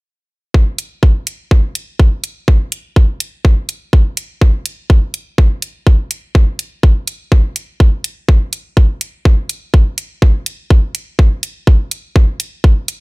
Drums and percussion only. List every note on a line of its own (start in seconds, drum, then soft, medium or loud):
0.54 kick loud
0.78 closed hi-hat medium
1.03 kick medium
1.27 closed hi-hat medium
1.51 kick loud
1.75 closed hi-hat medium
2.00 kick loud
2.24 closed hi-hat medium
2.48 kick loud
2.72 closed hi-hat medium
2.96 kick loud
3.20 closed hi-hat medium
3.45 kick loud
3.69 closed hi-hat medium
3.93 kick loud
4.17 closed hi-hat medium
4.41 kick loud
4.66 closed hi-hat medium
4.90 kick loud
5.14 closed hi-hat medium
5.38 kick loud
5.62 closed hi-hat medium
5.87 kick loud
6.11 closed hi-hat medium
6.35 kick loud
6.59 closed hi-hat medium
6.83 kick loud
7.08 closed hi-hat medium
7.32 kick loud
7.56 closed hi-hat medium
7.80 kick loud
8.04 closed hi-hat medium
8.28 kick loud
8.53 closed hi-hat medium
8.77 kick medium
9.01 closed hi-hat medium
9.25 kick loud
9.49 closed hi-hat medium
9.74 kick loud
9.98 closed hi-hat medium
10.22 kick loud
10.46 closed hi-hat medium
10.70 kick loud
10.95 closed hi-hat medium
11.19 kick loud
11.43 closed hi-hat medium
11.67 kick loud
11.91 closed hi-hat medium
12.16 kick loud
12.40 closed hi-hat medium
12.64 kick medium
12.88 closed hi-hat medium